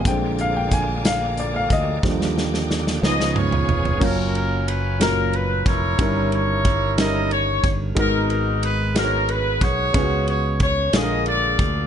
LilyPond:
<<
  \new Staff \with { instrumentName = "String section" } { \time 6/8 \key bes \mixolydian \tempo 4. = 61 << { <f'' d'''>2. | <ees'' g'' d'''>4. <f'' aes'' des'''>4. | \key fis \major r2. | r2. |
r2. | r2. | } \\ { bes''2.~ | bes''4. ces'''4. | r2. | r2. |
r2. | r2. | } >> }
  \new Staff \with { instrumentName = "Horn section" } { \time 6/8 \key bes \mixolydian << { r2. | r4. ees''8 des''4 | \key fis \major ais'8 ais'8 b'8 ais'8 b'8 cis''8~ | cis''8 cis''4 dis''8 cis''8 r8 |
ais'8 ais'8 b'8 ais'8 b'8 cis''8~ | cis''8 cis''8 cis''8 dis''8 d''4 | } \\ { r2. | r4. <aes' ces''>8 <f' aes'>4 | <cis' eis'>4. r4 <e' ais'>8~ | <e' ais'>8 <e' ais'>4. r4 |
<dis' fis'>4. r4 <fis' gis'>8~ | <fis' gis'>4 r8 gis'8 <eis' gis'>4 | } >> }
  \new Staff \with { instrumentName = "Upright piano" } { \time 6/8 \key bes \mixolydian g''8 f''16 g''16 aes''8 f''8 d''16 f''16 ees''8~ | ees''4 r2 | \key fis \major <fis ais cis' eis' cis''>4 r8 <ais, cis' eis' fis' ais''>4 r8 | <dis g cis' e' ais'>4 r8 <dis g cis' e' ais'>4 r8 |
<gis b dis' fis' ais'>4 r8 <gis b dis' fis' b' cis''>4 r8 | <gis b cis' eis' fis' b'>4 r8 <d gis ais eis' gis' ais'>4 r8 | }
  \new Staff \with { instrumentName = "Upright piano" } { \clef bass \time 6/8 \key bes \mixolydian <d aes c'>4. r4. | <d f g>4. <f ces' ees'>8 r4 | \key fis \major r2. | g,4. r4. |
gis,4. r4. | cis4. ais,4. | }
  \new Staff \with { instrumentName = "Tonewheel organ" } { \time 6/8 \key bes \mixolydian <d f bes aes'>2. | <d bes g'>4. <f ces' des' aes'>4. | \key fis \major r2. | r2. |
r2. | r2. | }
  \new Staff \with { instrumentName = "Fingered electric bass" } { \clef bass \time 6/8 \key bes \mixolydian bes,,2~ bes,,8 d,8 | ees,4. des,4 f,,8 | \key fis \major fis,,2~ fis,,8 eis,,8 | g,,2~ g,,8 g,,8 |
gis,,2~ gis,,8 b,,8 | cis,4. ais,,4 d,8 | }
  \new DrumStaff \with { instrumentName = "Drums" } \drummode { \time 6/8 <hh bd>8 hh8 <hh bd>8 <hh sn>8 hh8 <hh bd>8 | <bd sn>16 sn16 sn16 sn16 sn16 sn16 sn16 sn16 toml16 tomfh16 tomfh16 tomfh16 | <cymc bd>8 rb8 rb8 <rb sn>8 rb8 <bd rb>8 | <bd rb>8 rb8 <bd rb>8 <rb sn>8 rb8 <bd rb>8 |
<bd rb>8 rb8 rb8 <rb sn>8 rb8 <bd rb>8 | <bd rb>8 rb8 <bd rb>8 <rb sn>8 rb8 <bd rb>8 | }
>>